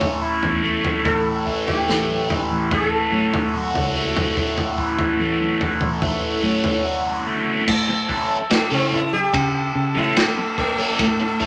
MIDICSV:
0, 0, Header, 1, 7, 480
1, 0, Start_track
1, 0, Tempo, 828729
1, 609, Time_signature, 4, 2, 24, 8
1, 6639, End_track
2, 0, Start_track
2, 0, Title_t, "Transistor combo organ"
2, 0, Program_c, 0, 18
2, 0, Note_on_c, 0, 69, 65
2, 0, Note_on_c, 0, 73, 56
2, 0, Note_on_c, 0, 76, 52
2, 0, Note_on_c, 0, 85, 71
2, 585, Note_off_c, 0, 73, 0
2, 588, Note_off_c, 0, 85, 0
2, 613, Note_on_c, 0, 85, 68
2, 614, Note_on_c, 0, 78, 54
2, 4427, Note_off_c, 0, 76, 0
2, 4428, Note_off_c, 0, 69, 0
2, 4429, Note_off_c, 0, 78, 0
2, 4429, Note_off_c, 0, 85, 0
2, 4445, Note_on_c, 0, 76, 56
2, 4446, Note_on_c, 0, 81, 56
2, 4448, Note_on_c, 0, 69, 68
2, 4448, Note_on_c, 0, 88, 77
2, 6639, Note_off_c, 0, 69, 0
2, 6639, Note_off_c, 0, 76, 0
2, 6639, Note_off_c, 0, 81, 0
2, 6639, Note_off_c, 0, 88, 0
2, 6639, End_track
3, 0, Start_track
3, 0, Title_t, "Sitar"
3, 0, Program_c, 1, 104
3, 607, Note_on_c, 1, 69, 110
3, 964, Note_off_c, 1, 69, 0
3, 966, Note_on_c, 1, 67, 99
3, 1581, Note_off_c, 1, 67, 0
3, 1584, Note_on_c, 1, 69, 80
3, 3954, Note_off_c, 1, 69, 0
3, 4932, Note_on_c, 1, 57, 89
3, 5042, Note_off_c, 1, 57, 0
3, 5058, Note_on_c, 1, 60, 88
3, 5166, Note_off_c, 1, 60, 0
3, 5176, Note_on_c, 1, 64, 86
3, 5284, Note_off_c, 1, 64, 0
3, 5288, Note_on_c, 1, 67, 113
3, 5753, Note_off_c, 1, 67, 0
3, 5779, Note_on_c, 1, 64, 84
3, 5885, Note_off_c, 1, 64, 0
3, 5895, Note_on_c, 1, 57, 88
3, 6124, Note_off_c, 1, 57, 0
3, 6129, Note_on_c, 1, 57, 104
3, 6639, Note_off_c, 1, 57, 0
3, 6639, End_track
4, 0, Start_track
4, 0, Title_t, "Overdriven electric guitar"
4, 0, Program_c, 2, 29
4, 0, Note_on_c, 2, 45, 73
4, 0, Note_on_c, 2, 52, 72
4, 0, Note_on_c, 2, 57, 76
4, 0, Note_on_c, 2, 61, 73
4, 0, Note_on_c, 2, 64, 71
4, 122, Note_off_c, 2, 64, 0
4, 125, Note_on_c, 2, 64, 68
4, 363, Note_off_c, 2, 57, 0
4, 365, Note_on_c, 2, 57, 72
4, 603, Note_off_c, 2, 45, 0
4, 605, Note_on_c, 2, 45, 68
4, 843, Note_off_c, 2, 52, 0
4, 846, Note_on_c, 2, 52, 64
4, 1085, Note_off_c, 2, 57, 0
4, 1087, Note_on_c, 2, 57, 66
4, 1326, Note_off_c, 2, 52, 0
4, 1329, Note_on_c, 2, 52, 66
4, 1568, Note_off_c, 2, 57, 0
4, 1570, Note_on_c, 2, 57, 79
4, 1806, Note_off_c, 2, 61, 0
4, 1809, Note_on_c, 2, 61, 60
4, 2049, Note_off_c, 2, 64, 0
4, 2051, Note_on_c, 2, 66, 74
4, 2284, Note_off_c, 2, 57, 0
4, 2291, Note_on_c, 2, 57, 62
4, 2530, Note_off_c, 2, 45, 0
4, 2532, Note_on_c, 2, 45, 75
4, 2763, Note_off_c, 2, 52, 0
4, 2765, Note_on_c, 2, 52, 75
4, 3002, Note_off_c, 2, 57, 0
4, 3009, Note_on_c, 2, 57, 63
4, 3010, Note_off_c, 2, 61, 0
4, 3245, Note_off_c, 2, 52, 0
4, 3251, Note_off_c, 2, 66, 0
4, 3252, Note_on_c, 2, 52, 64
4, 3483, Note_off_c, 2, 57, 0
4, 3490, Note_on_c, 2, 57, 69
4, 3727, Note_on_c, 2, 61, 65
4, 3732, Note_off_c, 2, 45, 0
4, 3962, Note_on_c, 2, 66, 69
4, 4200, Note_off_c, 2, 57, 0
4, 4207, Note_on_c, 2, 57, 64
4, 4446, Note_off_c, 2, 66, 0
4, 4448, Note_off_c, 2, 57, 0
4, 4449, Note_off_c, 2, 61, 0
4, 4451, Note_off_c, 2, 52, 0
4, 4684, Note_on_c, 2, 52, 89
4, 4685, Note_on_c, 2, 57, 104
4, 4689, Note_on_c, 2, 61, 98
4, 4690, Note_on_c, 2, 69, 96
4, 4843, Note_off_c, 2, 52, 0
4, 4844, Note_off_c, 2, 57, 0
4, 4845, Note_off_c, 2, 61, 0
4, 4846, Note_off_c, 2, 69, 0
4, 5042, Note_on_c, 2, 69, 76
4, 5045, Note_on_c, 2, 61, 68
4, 5047, Note_on_c, 2, 57, 64
4, 5049, Note_on_c, 2, 52, 63
4, 5201, Note_off_c, 2, 69, 0
4, 5203, Note_off_c, 2, 61, 0
4, 5204, Note_off_c, 2, 57, 0
4, 5205, Note_off_c, 2, 52, 0
4, 5762, Note_on_c, 2, 69, 74
4, 5764, Note_on_c, 2, 61, 75
4, 5768, Note_on_c, 2, 57, 63
4, 5770, Note_on_c, 2, 52, 68
4, 5921, Note_off_c, 2, 69, 0
4, 5922, Note_off_c, 2, 61, 0
4, 5924, Note_off_c, 2, 57, 0
4, 5925, Note_off_c, 2, 52, 0
4, 6245, Note_on_c, 2, 61, 86
4, 6245, Note_on_c, 2, 69, 88
4, 6249, Note_on_c, 2, 52, 81
4, 6249, Note_on_c, 2, 57, 77
4, 6401, Note_off_c, 2, 61, 0
4, 6401, Note_off_c, 2, 69, 0
4, 6404, Note_off_c, 2, 52, 0
4, 6404, Note_off_c, 2, 57, 0
4, 6601, Note_on_c, 2, 52, 103
4, 6604, Note_on_c, 2, 57, 90
4, 6605, Note_on_c, 2, 61, 99
4, 6608, Note_on_c, 2, 69, 102
4, 6639, Note_off_c, 2, 52, 0
4, 6639, Note_off_c, 2, 57, 0
4, 6639, Note_off_c, 2, 61, 0
4, 6639, Note_off_c, 2, 69, 0
4, 6639, End_track
5, 0, Start_track
5, 0, Title_t, "Fingered electric bass"
5, 0, Program_c, 3, 33
5, 0, Note_on_c, 3, 45, 79
5, 225, Note_off_c, 3, 45, 0
5, 249, Note_on_c, 3, 40, 78
5, 612, Note_on_c, 3, 33, 85
5, 620, Note_off_c, 3, 40, 0
5, 832, Note_off_c, 3, 33, 0
5, 1088, Note_on_c, 3, 33, 85
5, 1426, Note_off_c, 3, 33, 0
5, 1453, Note_on_c, 3, 33, 80
5, 1673, Note_off_c, 3, 33, 0
5, 1806, Note_on_c, 3, 45, 89
5, 2145, Note_off_c, 3, 45, 0
5, 2166, Note_on_c, 3, 37, 83
5, 2529, Note_off_c, 3, 37, 0
5, 2529, Note_on_c, 3, 33, 93
5, 2751, Note_off_c, 3, 33, 0
5, 3008, Note_on_c, 3, 33, 92
5, 3346, Note_off_c, 3, 33, 0
5, 3363, Note_on_c, 3, 33, 80
5, 3588, Note_off_c, 3, 33, 0
5, 3726, Note_on_c, 3, 45, 82
5, 3949, Note_off_c, 3, 45, 0
5, 4448, Note_on_c, 3, 45, 98
5, 4670, Note_off_c, 3, 45, 0
5, 5047, Note_on_c, 3, 49, 92
5, 5384, Note_off_c, 3, 49, 0
5, 5407, Note_on_c, 3, 49, 106
5, 5629, Note_off_c, 3, 49, 0
5, 5649, Note_on_c, 3, 49, 95
5, 5869, Note_off_c, 3, 49, 0
5, 6369, Note_on_c, 3, 45, 95
5, 6639, Note_off_c, 3, 45, 0
5, 6639, End_track
6, 0, Start_track
6, 0, Title_t, "Muted overdriven electric guitar strokes"
6, 4565, Note_on_c, 9, 29, 47
6, 4623, Note_off_c, 9, 29, 0
6, 4923, Note_on_c, 9, 29, 43
6, 4981, Note_off_c, 9, 29, 0
6, 5405, Note_on_c, 9, 29, 48
6, 5463, Note_off_c, 9, 29, 0
6, 6003, Note_on_c, 9, 29, 51
6, 6060, Note_off_c, 9, 29, 0
6, 6485, Note_on_c, 9, 29, 49
6, 6543, Note_off_c, 9, 29, 0
6, 6639, End_track
7, 0, Start_track
7, 0, Title_t, "Drums"
7, 6, Note_on_c, 9, 43, 89
7, 6, Note_on_c, 9, 64, 59
7, 64, Note_off_c, 9, 43, 0
7, 64, Note_off_c, 9, 64, 0
7, 248, Note_on_c, 9, 43, 70
7, 306, Note_off_c, 9, 43, 0
7, 365, Note_on_c, 9, 64, 63
7, 423, Note_off_c, 9, 64, 0
7, 487, Note_on_c, 9, 63, 61
7, 489, Note_on_c, 9, 43, 85
7, 545, Note_off_c, 9, 63, 0
7, 547, Note_off_c, 9, 43, 0
7, 610, Note_on_c, 9, 36, 95
7, 610, Note_on_c, 9, 43, 72
7, 668, Note_off_c, 9, 36, 0
7, 668, Note_off_c, 9, 43, 0
7, 851, Note_on_c, 9, 36, 71
7, 909, Note_off_c, 9, 36, 0
7, 973, Note_on_c, 9, 43, 82
7, 1030, Note_off_c, 9, 43, 0
7, 1097, Note_on_c, 9, 38, 73
7, 1155, Note_off_c, 9, 38, 0
7, 1213, Note_on_c, 9, 63, 67
7, 1271, Note_off_c, 9, 63, 0
7, 1332, Note_on_c, 9, 63, 62
7, 1332, Note_on_c, 9, 64, 69
7, 1334, Note_on_c, 9, 43, 87
7, 1390, Note_off_c, 9, 63, 0
7, 1390, Note_off_c, 9, 64, 0
7, 1391, Note_off_c, 9, 43, 0
7, 1571, Note_on_c, 9, 36, 113
7, 1573, Note_on_c, 9, 43, 86
7, 1629, Note_off_c, 9, 36, 0
7, 1631, Note_off_c, 9, 43, 0
7, 1810, Note_on_c, 9, 63, 72
7, 1868, Note_off_c, 9, 63, 0
7, 1932, Note_on_c, 9, 43, 90
7, 1933, Note_on_c, 9, 64, 68
7, 1990, Note_off_c, 9, 43, 0
7, 1991, Note_off_c, 9, 64, 0
7, 2174, Note_on_c, 9, 43, 77
7, 2232, Note_off_c, 9, 43, 0
7, 2291, Note_on_c, 9, 64, 68
7, 2348, Note_off_c, 9, 64, 0
7, 2405, Note_on_c, 9, 63, 72
7, 2412, Note_on_c, 9, 43, 100
7, 2463, Note_off_c, 9, 63, 0
7, 2470, Note_off_c, 9, 43, 0
7, 2531, Note_on_c, 9, 36, 92
7, 2531, Note_on_c, 9, 43, 73
7, 2589, Note_off_c, 9, 36, 0
7, 2589, Note_off_c, 9, 43, 0
7, 2651, Note_on_c, 9, 43, 83
7, 2709, Note_off_c, 9, 43, 0
7, 2769, Note_on_c, 9, 36, 81
7, 2827, Note_off_c, 9, 36, 0
7, 2888, Note_on_c, 9, 43, 85
7, 2946, Note_off_c, 9, 43, 0
7, 3128, Note_on_c, 9, 63, 76
7, 3185, Note_off_c, 9, 63, 0
7, 3246, Note_on_c, 9, 64, 79
7, 3249, Note_on_c, 9, 43, 81
7, 3304, Note_off_c, 9, 64, 0
7, 3307, Note_off_c, 9, 43, 0
7, 3363, Note_on_c, 9, 43, 72
7, 3363, Note_on_c, 9, 47, 69
7, 3421, Note_off_c, 9, 43, 0
7, 3421, Note_off_c, 9, 47, 0
7, 3486, Note_on_c, 9, 43, 86
7, 3487, Note_on_c, 9, 36, 109
7, 3544, Note_off_c, 9, 43, 0
7, 3545, Note_off_c, 9, 36, 0
7, 3726, Note_on_c, 9, 63, 73
7, 3784, Note_off_c, 9, 63, 0
7, 3845, Note_on_c, 9, 43, 86
7, 3847, Note_on_c, 9, 64, 67
7, 3903, Note_off_c, 9, 43, 0
7, 3905, Note_off_c, 9, 64, 0
7, 4446, Note_on_c, 9, 49, 100
7, 4447, Note_on_c, 9, 36, 100
7, 4504, Note_off_c, 9, 49, 0
7, 4505, Note_off_c, 9, 36, 0
7, 4687, Note_on_c, 9, 36, 86
7, 4745, Note_off_c, 9, 36, 0
7, 4926, Note_on_c, 9, 53, 68
7, 4930, Note_on_c, 9, 38, 99
7, 4984, Note_off_c, 9, 53, 0
7, 4988, Note_off_c, 9, 38, 0
7, 5170, Note_on_c, 9, 64, 83
7, 5228, Note_off_c, 9, 64, 0
7, 5286, Note_on_c, 9, 63, 78
7, 5344, Note_off_c, 9, 63, 0
7, 5408, Note_on_c, 9, 36, 120
7, 5410, Note_on_c, 9, 53, 78
7, 5466, Note_off_c, 9, 36, 0
7, 5468, Note_off_c, 9, 53, 0
7, 5769, Note_on_c, 9, 63, 69
7, 5769, Note_on_c, 9, 64, 61
7, 5827, Note_off_c, 9, 63, 0
7, 5827, Note_off_c, 9, 64, 0
7, 5888, Note_on_c, 9, 53, 81
7, 5892, Note_on_c, 9, 38, 115
7, 5946, Note_off_c, 9, 53, 0
7, 5950, Note_off_c, 9, 38, 0
7, 6127, Note_on_c, 9, 36, 99
7, 6129, Note_on_c, 9, 64, 77
7, 6185, Note_off_c, 9, 36, 0
7, 6187, Note_off_c, 9, 64, 0
7, 6366, Note_on_c, 9, 53, 65
7, 6367, Note_on_c, 9, 36, 103
7, 6424, Note_off_c, 9, 53, 0
7, 6425, Note_off_c, 9, 36, 0
7, 6607, Note_on_c, 9, 36, 84
7, 6639, Note_off_c, 9, 36, 0
7, 6639, End_track
0, 0, End_of_file